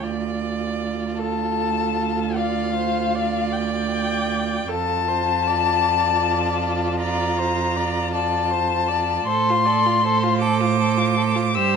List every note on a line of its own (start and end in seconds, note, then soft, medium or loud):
0.02 4.65 D2 medium
0.02 4.65 F4 soft
0.02 1.20 D5 medium
1.18 2.38 A4 medium
1.18 2.37 A5 medium
2.36 2.76 D5 medium
2.36 3.54 F5 medium
2.76 3.16 C5 medium
3.15 4.70 D5 medium
3.52 4.71 G5 medium
4.69 9.24 F2 medium
4.69 9.24 F4 medium
4.69 5.09 A4 medium
4.69 6.99 A5 medium
5.08 5.48 C5 medium
5.46 6.98 D5 medium
6.99 7.40 D5 medium
6.99 8.12 A#5 medium
7.38 7.77 C5 medium
7.76 8.13 D5 medium
8.13 8.52 D5 medium
8.13 9.25 A5 medium
8.50 8.90 C5 medium
8.88 9.28 D5 medium
9.26 11.57 A2 medium
9.26 9.51 A4 medium
9.26 9.67 C5 medium
9.26 10.38 C6 medium
9.50 9.68 F4 soft
9.65 9.88 A4 medium
9.65 10.04 D5 medium
9.86 10.04 F4 medium
10.03 10.25 A4 medium
10.03 11.55 C5 medium
10.24 10.43 F4 soft
10.41 10.63 A4 medium
10.41 11.56 D6 medium
10.61 10.79 F4 soft
10.80 10.99 A4 soft
10.98 11.18 F4 soft
11.17 11.37 A4 medium
11.36 11.55 F4 soft
11.55 11.76 G2 medium
11.55 11.76 G4 medium
11.55 11.76 C5 medium
11.55 11.76 E6 loud